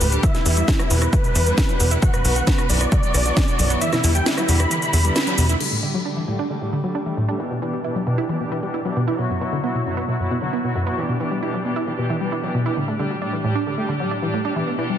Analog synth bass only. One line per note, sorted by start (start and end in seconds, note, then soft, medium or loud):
0.01 0.18 D2 medium
0.46 0.63 E2 loud
0.91 1.07 E2 loud
1.35 1.52 E2 loud
1.80 1.97 E2 medium
2.25 2.42 B1 loud
2.70 2.86 B1 loud
3.14 3.31 B1 loud
3.59 3.76 B1 medium
4.04 4.21 E2 loud
4.49 4.66 E2 loud
4.93 5.10 E2 loud
5.38 5.55 E2 medium